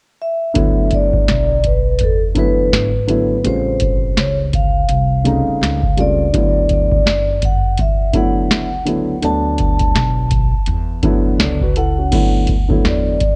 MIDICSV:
0, 0, Header, 1, 6, 480
1, 0, Start_track
1, 0, Key_signature, 2, "major"
1, 0, Tempo, 722892
1, 368, Time_signature, 4, 2, 24, 8
1, 8868, End_track
2, 0, Start_track
2, 0, Title_t, "Vibraphone"
2, 0, Program_c, 0, 11
2, 143, Note_on_c, 0, 76, 88
2, 627, Note_on_c, 0, 74, 80
2, 630, Note_off_c, 0, 76, 0
2, 1106, Note_on_c, 0, 71, 74
2, 1111, Note_off_c, 0, 74, 0
2, 1344, Note_off_c, 0, 71, 0
2, 1350, Note_on_c, 0, 69, 76
2, 1453, Note_off_c, 0, 69, 0
2, 1586, Note_on_c, 0, 71, 85
2, 2304, Note_on_c, 0, 72, 81
2, 2319, Note_off_c, 0, 71, 0
2, 2784, Note_on_c, 0, 73, 75
2, 2790, Note_off_c, 0, 72, 0
2, 2889, Note_off_c, 0, 73, 0
2, 3021, Note_on_c, 0, 77, 97
2, 3988, Note_on_c, 0, 74, 88
2, 4003, Note_off_c, 0, 77, 0
2, 4462, Note_off_c, 0, 74, 0
2, 4470, Note_on_c, 0, 74, 85
2, 4912, Note_off_c, 0, 74, 0
2, 4948, Note_on_c, 0, 78, 99
2, 5162, Note_off_c, 0, 78, 0
2, 5185, Note_on_c, 0, 76, 85
2, 5400, Note_off_c, 0, 76, 0
2, 5427, Note_on_c, 0, 78, 78
2, 5871, Note_off_c, 0, 78, 0
2, 6141, Note_on_c, 0, 81, 98
2, 6372, Note_off_c, 0, 81, 0
2, 6380, Note_on_c, 0, 81, 84
2, 6827, Note_off_c, 0, 81, 0
2, 7821, Note_on_c, 0, 78, 102
2, 8268, Note_off_c, 0, 78, 0
2, 8552, Note_on_c, 0, 74, 74
2, 8868, Note_off_c, 0, 74, 0
2, 8868, End_track
3, 0, Start_track
3, 0, Title_t, "Grand piano"
3, 0, Program_c, 1, 0
3, 359, Note_on_c, 1, 50, 71
3, 362, Note_on_c, 1, 54, 69
3, 368, Note_on_c, 1, 57, 65
3, 372, Note_on_c, 1, 59, 66
3, 377, Note_on_c, 1, 64, 77
3, 1038, Note_off_c, 1, 50, 0
3, 1040, Note_off_c, 1, 54, 0
3, 1042, Note_off_c, 1, 57, 0
3, 1044, Note_off_c, 1, 59, 0
3, 1047, Note_off_c, 1, 64, 0
3, 1558, Note_on_c, 1, 50, 66
3, 1560, Note_on_c, 1, 54, 66
3, 1567, Note_on_c, 1, 57, 61
3, 1570, Note_on_c, 1, 59, 70
3, 1575, Note_on_c, 1, 64, 76
3, 1912, Note_off_c, 1, 50, 0
3, 1913, Note_off_c, 1, 54, 0
3, 1917, Note_off_c, 1, 57, 0
3, 1918, Note_off_c, 1, 59, 0
3, 1921, Note_off_c, 1, 64, 0
3, 2040, Note_on_c, 1, 50, 61
3, 2042, Note_on_c, 1, 54, 63
3, 2048, Note_on_c, 1, 57, 59
3, 2053, Note_on_c, 1, 59, 57
3, 2057, Note_on_c, 1, 64, 74
3, 2224, Note_off_c, 1, 50, 0
3, 2225, Note_off_c, 1, 54, 0
3, 2228, Note_off_c, 1, 57, 0
3, 2231, Note_off_c, 1, 59, 0
3, 2232, Note_off_c, 1, 64, 0
3, 2280, Note_on_c, 1, 49, 64
3, 2286, Note_on_c, 1, 55, 59
3, 2289, Note_on_c, 1, 57, 56
3, 2293, Note_on_c, 1, 60, 55
3, 2298, Note_on_c, 1, 65, 61
3, 2958, Note_off_c, 1, 49, 0
3, 2961, Note_off_c, 1, 55, 0
3, 2963, Note_off_c, 1, 57, 0
3, 2965, Note_off_c, 1, 60, 0
3, 2967, Note_off_c, 1, 65, 0
3, 3480, Note_on_c, 1, 49, 74
3, 3483, Note_on_c, 1, 55, 60
3, 3490, Note_on_c, 1, 57, 63
3, 3493, Note_on_c, 1, 60, 63
3, 3497, Note_on_c, 1, 63, 73
3, 3833, Note_off_c, 1, 49, 0
3, 3835, Note_off_c, 1, 55, 0
3, 3838, Note_off_c, 1, 57, 0
3, 3840, Note_off_c, 1, 60, 0
3, 3842, Note_off_c, 1, 63, 0
3, 3962, Note_on_c, 1, 49, 64
3, 3966, Note_on_c, 1, 55, 59
3, 3971, Note_on_c, 1, 57, 60
3, 3977, Note_on_c, 1, 60, 64
3, 3979, Note_on_c, 1, 65, 65
3, 4145, Note_off_c, 1, 49, 0
3, 4147, Note_off_c, 1, 55, 0
3, 4149, Note_off_c, 1, 57, 0
3, 4152, Note_off_c, 1, 60, 0
3, 4154, Note_off_c, 1, 65, 0
3, 4203, Note_on_c, 1, 50, 64
3, 4208, Note_on_c, 1, 54, 58
3, 4211, Note_on_c, 1, 57, 58
3, 4216, Note_on_c, 1, 59, 54
3, 4221, Note_on_c, 1, 64, 64
3, 4880, Note_off_c, 1, 50, 0
3, 4882, Note_off_c, 1, 54, 0
3, 4884, Note_off_c, 1, 57, 0
3, 4887, Note_off_c, 1, 59, 0
3, 4889, Note_off_c, 1, 64, 0
3, 5400, Note_on_c, 1, 50, 70
3, 5406, Note_on_c, 1, 54, 68
3, 5409, Note_on_c, 1, 57, 67
3, 5413, Note_on_c, 1, 59, 60
3, 5417, Note_on_c, 1, 64, 86
3, 5753, Note_off_c, 1, 50, 0
3, 5756, Note_off_c, 1, 54, 0
3, 5758, Note_off_c, 1, 57, 0
3, 5759, Note_off_c, 1, 59, 0
3, 5761, Note_off_c, 1, 64, 0
3, 5878, Note_on_c, 1, 50, 67
3, 5883, Note_on_c, 1, 54, 61
3, 5888, Note_on_c, 1, 57, 61
3, 5892, Note_on_c, 1, 59, 60
3, 5897, Note_on_c, 1, 64, 69
3, 6063, Note_off_c, 1, 50, 0
3, 6066, Note_off_c, 1, 54, 0
3, 6068, Note_off_c, 1, 57, 0
3, 6070, Note_off_c, 1, 59, 0
3, 6072, Note_off_c, 1, 64, 0
3, 6122, Note_on_c, 1, 50, 61
3, 6126, Note_on_c, 1, 54, 59
3, 6129, Note_on_c, 1, 57, 58
3, 6135, Note_on_c, 1, 59, 59
3, 6139, Note_on_c, 1, 62, 67
3, 6799, Note_off_c, 1, 50, 0
3, 6801, Note_off_c, 1, 54, 0
3, 6803, Note_off_c, 1, 57, 0
3, 6806, Note_off_c, 1, 59, 0
3, 6808, Note_off_c, 1, 62, 0
3, 7322, Note_on_c, 1, 50, 81
3, 7325, Note_on_c, 1, 54, 74
3, 7328, Note_on_c, 1, 57, 74
3, 7334, Note_on_c, 1, 59, 78
3, 7338, Note_on_c, 1, 64, 83
3, 7573, Note_off_c, 1, 64, 0
3, 7573, Note_on_c, 1, 74, 64
3, 7576, Note_on_c, 1, 69, 52
3, 7674, Note_off_c, 1, 50, 0
3, 7676, Note_off_c, 1, 54, 0
3, 7677, Note_off_c, 1, 57, 0
3, 7680, Note_off_c, 1, 59, 0
3, 7706, Note_off_c, 1, 74, 0
3, 7708, Note_off_c, 1, 69, 0
3, 7715, Note_on_c, 1, 71, 71
3, 7718, Note_on_c, 1, 66, 61
3, 7805, Note_off_c, 1, 71, 0
3, 7807, Note_off_c, 1, 66, 0
3, 7812, Note_on_c, 1, 69, 69
3, 7816, Note_on_c, 1, 64, 53
3, 7946, Note_off_c, 1, 69, 0
3, 7948, Note_off_c, 1, 64, 0
3, 7954, Note_on_c, 1, 66, 59
3, 7957, Note_on_c, 1, 61, 51
3, 8043, Note_on_c, 1, 50, 63
3, 8049, Note_on_c, 1, 54, 59
3, 8052, Note_on_c, 1, 57, 59
3, 8058, Note_on_c, 1, 59, 59
3, 8062, Note_on_c, 1, 64, 69
3, 8181, Note_off_c, 1, 66, 0
3, 8182, Note_off_c, 1, 61, 0
3, 8296, Note_off_c, 1, 50, 0
3, 8299, Note_off_c, 1, 54, 0
3, 8301, Note_off_c, 1, 57, 0
3, 8304, Note_off_c, 1, 59, 0
3, 8306, Note_off_c, 1, 64, 0
3, 8422, Note_on_c, 1, 50, 64
3, 8427, Note_on_c, 1, 54, 64
3, 8433, Note_on_c, 1, 57, 66
3, 8435, Note_on_c, 1, 59, 59
3, 8441, Note_on_c, 1, 64, 73
3, 8741, Note_off_c, 1, 50, 0
3, 8743, Note_off_c, 1, 54, 0
3, 8746, Note_off_c, 1, 57, 0
3, 8747, Note_off_c, 1, 59, 0
3, 8750, Note_off_c, 1, 64, 0
3, 8868, End_track
4, 0, Start_track
4, 0, Title_t, "Upright bass"
4, 0, Program_c, 2, 32
4, 372, Note_on_c, 2, 38, 94
4, 826, Note_off_c, 2, 38, 0
4, 850, Note_on_c, 2, 35, 87
4, 1305, Note_off_c, 2, 35, 0
4, 1332, Note_on_c, 2, 40, 74
4, 1786, Note_off_c, 2, 40, 0
4, 1808, Note_on_c, 2, 32, 87
4, 2264, Note_off_c, 2, 32, 0
4, 2286, Note_on_c, 2, 33, 90
4, 2743, Note_off_c, 2, 33, 0
4, 2767, Note_on_c, 2, 37, 90
4, 3224, Note_off_c, 2, 37, 0
4, 3247, Note_on_c, 2, 36, 84
4, 3611, Note_off_c, 2, 36, 0
4, 3725, Note_on_c, 2, 37, 89
4, 4182, Note_off_c, 2, 37, 0
4, 4212, Note_on_c, 2, 38, 91
4, 4666, Note_off_c, 2, 38, 0
4, 4688, Note_on_c, 2, 42, 91
4, 5144, Note_off_c, 2, 42, 0
4, 5173, Note_on_c, 2, 40, 76
4, 5646, Note_off_c, 2, 40, 0
4, 5646, Note_on_c, 2, 37, 103
4, 6103, Note_off_c, 2, 37, 0
4, 6128, Note_on_c, 2, 38, 90
4, 6584, Note_off_c, 2, 38, 0
4, 6606, Note_on_c, 2, 35, 97
4, 6971, Note_off_c, 2, 35, 0
4, 7088, Note_on_c, 2, 40, 93
4, 7544, Note_off_c, 2, 40, 0
4, 7568, Note_on_c, 2, 37, 90
4, 8024, Note_off_c, 2, 37, 0
4, 8052, Note_on_c, 2, 38, 92
4, 8506, Note_off_c, 2, 38, 0
4, 8532, Note_on_c, 2, 40, 91
4, 8868, Note_off_c, 2, 40, 0
4, 8868, End_track
5, 0, Start_track
5, 0, Title_t, "Muted upright bass strokes"
5, 3631, Note_on_c, 9, 29, 45
5, 3697, Note_off_c, 9, 29, 0
5, 6991, Note_on_c, 9, 29, 44
5, 7058, Note_off_c, 9, 29, 0
5, 8868, End_track
6, 0, Start_track
6, 0, Title_t, "Drums"
6, 367, Note_on_c, 9, 42, 84
6, 370, Note_on_c, 9, 36, 98
6, 434, Note_off_c, 9, 42, 0
6, 437, Note_off_c, 9, 36, 0
6, 602, Note_on_c, 9, 42, 55
6, 615, Note_on_c, 9, 36, 77
6, 669, Note_off_c, 9, 42, 0
6, 681, Note_off_c, 9, 36, 0
6, 752, Note_on_c, 9, 36, 86
6, 819, Note_off_c, 9, 36, 0
6, 850, Note_on_c, 9, 38, 102
6, 851, Note_on_c, 9, 42, 80
6, 917, Note_off_c, 9, 38, 0
6, 917, Note_off_c, 9, 42, 0
6, 1086, Note_on_c, 9, 42, 74
6, 1088, Note_on_c, 9, 36, 83
6, 1152, Note_off_c, 9, 42, 0
6, 1155, Note_off_c, 9, 36, 0
6, 1319, Note_on_c, 9, 42, 77
6, 1331, Note_on_c, 9, 36, 80
6, 1386, Note_off_c, 9, 42, 0
6, 1397, Note_off_c, 9, 36, 0
6, 1563, Note_on_c, 9, 36, 81
6, 1563, Note_on_c, 9, 42, 71
6, 1629, Note_off_c, 9, 36, 0
6, 1629, Note_off_c, 9, 42, 0
6, 1813, Note_on_c, 9, 38, 105
6, 1817, Note_on_c, 9, 42, 91
6, 1879, Note_off_c, 9, 38, 0
6, 1884, Note_off_c, 9, 42, 0
6, 2048, Note_on_c, 9, 42, 70
6, 2115, Note_off_c, 9, 42, 0
6, 2288, Note_on_c, 9, 42, 83
6, 2354, Note_off_c, 9, 42, 0
6, 2523, Note_on_c, 9, 42, 60
6, 2535, Note_on_c, 9, 36, 76
6, 2590, Note_off_c, 9, 42, 0
6, 2601, Note_off_c, 9, 36, 0
6, 2772, Note_on_c, 9, 38, 91
6, 2772, Note_on_c, 9, 42, 88
6, 2838, Note_off_c, 9, 38, 0
6, 2839, Note_off_c, 9, 42, 0
6, 3009, Note_on_c, 9, 42, 75
6, 3010, Note_on_c, 9, 36, 87
6, 3076, Note_off_c, 9, 36, 0
6, 3076, Note_off_c, 9, 42, 0
6, 3244, Note_on_c, 9, 42, 78
6, 3310, Note_off_c, 9, 42, 0
6, 3487, Note_on_c, 9, 42, 68
6, 3553, Note_off_c, 9, 42, 0
6, 3736, Note_on_c, 9, 38, 104
6, 3740, Note_on_c, 9, 42, 93
6, 3802, Note_off_c, 9, 38, 0
6, 3806, Note_off_c, 9, 42, 0
6, 3870, Note_on_c, 9, 36, 80
6, 3937, Note_off_c, 9, 36, 0
6, 3967, Note_on_c, 9, 42, 69
6, 4033, Note_off_c, 9, 42, 0
6, 4209, Note_on_c, 9, 42, 84
6, 4211, Note_on_c, 9, 36, 93
6, 4275, Note_off_c, 9, 42, 0
6, 4277, Note_off_c, 9, 36, 0
6, 4443, Note_on_c, 9, 42, 54
6, 4454, Note_on_c, 9, 36, 74
6, 4510, Note_off_c, 9, 42, 0
6, 4521, Note_off_c, 9, 36, 0
6, 4593, Note_on_c, 9, 36, 90
6, 4659, Note_off_c, 9, 36, 0
6, 4693, Note_on_c, 9, 38, 101
6, 4694, Note_on_c, 9, 42, 79
6, 4759, Note_off_c, 9, 38, 0
6, 4760, Note_off_c, 9, 42, 0
6, 4927, Note_on_c, 9, 42, 80
6, 4930, Note_on_c, 9, 36, 95
6, 4994, Note_off_c, 9, 42, 0
6, 4996, Note_off_c, 9, 36, 0
6, 5163, Note_on_c, 9, 42, 80
6, 5171, Note_on_c, 9, 36, 86
6, 5229, Note_off_c, 9, 42, 0
6, 5238, Note_off_c, 9, 36, 0
6, 5402, Note_on_c, 9, 42, 70
6, 5403, Note_on_c, 9, 36, 77
6, 5469, Note_off_c, 9, 36, 0
6, 5469, Note_off_c, 9, 42, 0
6, 5650, Note_on_c, 9, 38, 115
6, 5654, Note_on_c, 9, 42, 88
6, 5717, Note_off_c, 9, 38, 0
6, 5721, Note_off_c, 9, 42, 0
6, 5887, Note_on_c, 9, 42, 71
6, 5953, Note_off_c, 9, 42, 0
6, 6126, Note_on_c, 9, 42, 85
6, 6193, Note_off_c, 9, 42, 0
6, 6362, Note_on_c, 9, 42, 55
6, 6374, Note_on_c, 9, 36, 83
6, 6429, Note_off_c, 9, 42, 0
6, 6440, Note_off_c, 9, 36, 0
6, 6504, Note_on_c, 9, 42, 45
6, 6513, Note_on_c, 9, 36, 84
6, 6570, Note_off_c, 9, 42, 0
6, 6579, Note_off_c, 9, 36, 0
6, 6611, Note_on_c, 9, 38, 111
6, 6612, Note_on_c, 9, 42, 84
6, 6677, Note_off_c, 9, 38, 0
6, 6678, Note_off_c, 9, 42, 0
6, 6845, Note_on_c, 9, 42, 74
6, 6849, Note_on_c, 9, 36, 92
6, 6911, Note_off_c, 9, 42, 0
6, 6915, Note_off_c, 9, 36, 0
6, 7080, Note_on_c, 9, 42, 84
6, 7146, Note_off_c, 9, 42, 0
6, 7322, Note_on_c, 9, 36, 85
6, 7322, Note_on_c, 9, 42, 66
6, 7388, Note_off_c, 9, 42, 0
6, 7389, Note_off_c, 9, 36, 0
6, 7567, Note_on_c, 9, 38, 110
6, 7571, Note_on_c, 9, 42, 83
6, 7633, Note_off_c, 9, 38, 0
6, 7637, Note_off_c, 9, 42, 0
6, 7709, Note_on_c, 9, 36, 78
6, 7776, Note_off_c, 9, 36, 0
6, 7807, Note_on_c, 9, 42, 74
6, 7874, Note_off_c, 9, 42, 0
6, 8048, Note_on_c, 9, 42, 91
6, 8048, Note_on_c, 9, 49, 87
6, 8050, Note_on_c, 9, 36, 109
6, 8114, Note_off_c, 9, 42, 0
6, 8114, Note_off_c, 9, 49, 0
6, 8116, Note_off_c, 9, 36, 0
6, 8281, Note_on_c, 9, 42, 64
6, 8294, Note_on_c, 9, 36, 84
6, 8347, Note_off_c, 9, 42, 0
6, 8361, Note_off_c, 9, 36, 0
6, 8432, Note_on_c, 9, 36, 89
6, 8499, Note_off_c, 9, 36, 0
6, 8530, Note_on_c, 9, 38, 97
6, 8531, Note_on_c, 9, 42, 84
6, 8597, Note_off_c, 9, 38, 0
6, 8598, Note_off_c, 9, 42, 0
6, 8766, Note_on_c, 9, 42, 83
6, 8769, Note_on_c, 9, 36, 86
6, 8833, Note_off_c, 9, 42, 0
6, 8835, Note_off_c, 9, 36, 0
6, 8868, End_track
0, 0, End_of_file